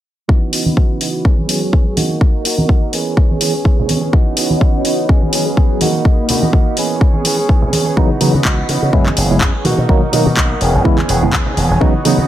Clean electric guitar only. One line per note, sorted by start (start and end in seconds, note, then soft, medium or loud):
0.28 0.51 E3 medium
0.28 0.52 B3 medium
0.28 0.53 D#4 medium
0.28 0.54 F#4 medium
0.52 0.66 E3 medium
0.52 0.66 B3 medium
0.52 0.66 D#4 medium
0.52 0.64 F#4 medium
0.65 0.76 B3 soft
0.65 0.76 D#4 medium
0.65 0.77 F#4 medium
0.76 0.99 E3 medium
0.76 1.00 B3 medium
0.76 1.01 D#4 medium
0.76 1.01 F#4 loud
1.00 1.23 E3 medium
1.00 1.24 B3 medium
1.00 1.25 D#4 medium
1.00 1.25 F#4 medium
1.24 1.38 E3 medium
1.24 1.37 C#4 medium
1.24 1.36 G#4 medium
1.37 1.48 B3 soft
1.37 1.49 C#4 medium
1.37 1.48 G#4 medium
1.48 1.62 E3 medium
1.48 1.62 B3 medium
1.48 1.61 C#4 medium
1.48 1.60 G#4 medium
1.61 1.72 B3 soft
1.61 1.72 C#4 soft
1.61 1.73 G#4 medium
1.72 1.86 E3 medium
1.72 1.86 B3 medium
1.72 1.85 C#4 medium
1.72 1.84 G#4 medium
1.85 1.95 B3 soft
1.85 1.97 C#4 soft
1.85 1.96 G#4 medium
1.96 2.43 A#3 medium
1.96 2.44 D#4 medium
1.96 2.45 F#4 medium
2.44 2.58 A#3 medium
2.44 2.58 D#4 medium
2.44 2.56 F#4 medium
2.57 2.68 D#4 soft
2.57 2.68 F#4 medium
2.68 2.92 A#3 medium
2.68 2.93 D#4 medium
2.92 3.30 E3 medium
2.92 3.30 B3 medium
2.92 3.29 C#4 medium
2.92 3.28 G#4 medium
3.29 3.40 B3 soft
3.29 3.41 C#4 medium
3.29 3.41 G#4 medium
3.40 3.54 E3 medium
3.40 3.54 B3 medium
3.40 3.54 C#4 medium
3.40 3.52 G#4 medium
3.53 3.64 B3 soft
3.53 3.64 C#4 soft
3.53 3.65 G#4 medium
3.64 3.78 E3 medium
3.64 3.78 B3 medium
3.64 3.78 C#4 loud
3.64 3.76 G#4 medium
3.77 4.03 B3 soft
3.77 4.02 C#4 soft
3.77 4.00 G#4 medium
4.01 4.12 B3 soft
4.01 4.13 C#4 medium
4.01 4.13 G#4 medium
4.12 4.35 E3 medium
4.12 4.36 B3 medium
4.12 4.38 F#4 medium
4.36 4.50 E3 medium
4.36 4.50 B3 medium
4.36 4.50 D#4 medium
4.36 4.48 F#4 medium
4.49 4.60 B3 soft
4.49 4.61 D#4 medium
4.49 4.61 F#4 medium
4.60 4.83 E3 medium
4.60 4.84 B3 medium
4.60 4.85 D#4 medium
4.60 4.85 F#4 medium
4.84 5.07 E3 medium
4.84 5.08 B3 medium
4.84 5.09 D#4 medium
4.84 5.10 F#4 medium
5.08 5.22 E3 medium
5.08 5.22 B3 medium
5.08 5.22 C#4 medium
5.08 5.20 G#4 medium
5.22 5.32 B3 soft
5.22 5.33 C#4 medium
5.22 5.33 G#4 medium
5.32 5.46 E3 medium
5.32 5.46 B3 medium
5.32 5.46 C#4 medium
5.32 5.45 G#4 medium
5.46 5.56 B3 soft
5.46 5.57 C#4 medium
5.46 5.57 G#4 soft
5.57 5.81 E3 medium
5.57 5.80 B3 medium
5.57 5.81 C#4 medium
5.57 5.82 G#4 medium
5.81 6.27 A#3 medium
5.81 6.29 D#4 medium
5.81 6.30 F#4 medium
6.28 6.42 A#3 medium
6.28 6.43 D#4 medium
6.28 6.40 F#4 medium
6.42 6.53 D#4 soft
6.42 6.53 F#4 medium
6.53 6.77 A#3 medium
6.53 6.78 D#4 medium
6.53 6.78 F#4 medium
6.77 7.14 E3 medium
6.77 7.15 B3 medium
6.77 7.14 C#4 medium
6.77 7.13 G#4 medium
7.14 7.25 B3 soft
7.14 7.25 C#4 medium
7.14 7.25 G#4 medium
7.25 7.38 E3 medium
7.25 7.39 B3 medium
7.25 7.38 C#4 medium
7.25 7.37 G#4 medium
7.38 7.48 B3 soft
7.38 7.49 C#4 soft
7.38 7.49 G#4 medium
7.49 7.62 E3 medium
7.49 7.63 B3 medium
7.62 7.87 B3 soft
7.62 7.86 C#4 soft
7.62 7.85 G#4 medium
7.86 7.96 B3 soft
7.86 7.97 C#4 medium
7.86 7.97 G#4 medium
7.96 8.19 E3 medium
7.96 8.20 B3 medium
7.96 8.21 D#4 medium
7.96 8.22 F#4 medium
8.20 8.34 E3 medium
8.20 8.34 B3 medium
8.20 8.34 D#4 medium
8.20 8.32 F#4 medium
8.33 8.44 B3 soft
8.33 8.45 D#4 medium
8.33 8.45 F#4 medium
8.45 8.67 E3 medium
8.45 8.68 B3 medium
8.45 8.69 D#4 medium
8.45 8.70 F#4 medium
8.68 8.92 E3 medium
8.68 8.92 B3 medium
8.68 8.93 D#4 medium
8.68 8.94 F#4 medium
8.93 9.06 E3 medium
8.93 9.06 B3 medium
8.93 9.06 C#4 medium
8.93 9.04 G#4 medium
9.05 9.16 B3 soft
9.05 9.17 C#4 medium
9.05 9.17 G#4 medium
9.16 9.30 E3 medium
9.16 9.30 B3 medium
9.16 9.30 C#4 medium
9.16 9.28 G#4 medium
9.29 9.40 B3 soft
9.29 9.40 C#4 soft
9.29 9.41 G#4 medium
9.40 9.54 E3 medium
9.40 9.54 B3 medium
9.40 9.54 C#4 loud
9.40 9.52 G#4 medium
9.54 9.65 B3 soft
9.54 9.65 C#4 soft
9.54 9.65 G#4 medium
9.65 10.11 F#3 medium
9.65 10.12 A#3 medium
9.65 10.13 D#4 medium
9.65 10.14 F#4 medium
10.12 10.26 F#3 medium
10.12 10.26 A#3 medium
10.12 10.26 D#4 medium
10.12 10.24 F#4 medium
10.25 10.36 A#3 soft
10.25 10.36 D#4 medium
10.25 10.37 F#4 medium
10.36 10.60 F#3 medium
10.36 10.61 D#4 loud
10.36 10.62 F#4 medium
10.60 10.98 E3 medium
10.60 10.98 B3 medium
10.60 10.98 C#4 medium
10.60 10.96 G#4 medium
10.97 11.08 B3 soft
10.97 11.09 C#4 medium
10.97 11.09 G#4 medium
11.08 11.22 E3 medium
11.08 11.22 B3 medium
11.08 11.21 C#4 medium
11.08 11.20 G#4 medium
11.21 11.32 C#4 soft
11.21 11.33 G#4 medium
11.32 11.46 E3 medium
11.32 11.46 B3 medium
11.32 11.45 C#4 medium
11.32 11.44 G#4 medium
11.45 11.70 B3 soft
11.45 11.69 C#4 soft
11.45 11.68 G#4 medium
11.69 11.80 B3 medium
11.69 11.81 C#4 medium
11.69 11.80 G#4 medium
11.80 12.03 E3 medium
11.80 12.04 B3 medium
11.80 12.05 D#4 medium
11.80 12.06 F#4 loud
12.04 12.18 E3 medium
12.04 12.18 B3 medium
12.04 12.17 D#4 medium
12.04 12.16 F#4 medium
12.17 12.28 B3 soft
12.17 12.28 D#4 medium
12.17 12.28 F#4 medium